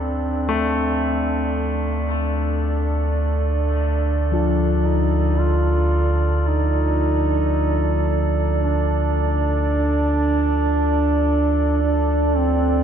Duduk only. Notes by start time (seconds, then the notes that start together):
0.01 C4
2.16 D4
4.32 D4
4.85 D#4
5.39 F4
6.48 D#4
8.62 D4
11.82 D4
12.37 C4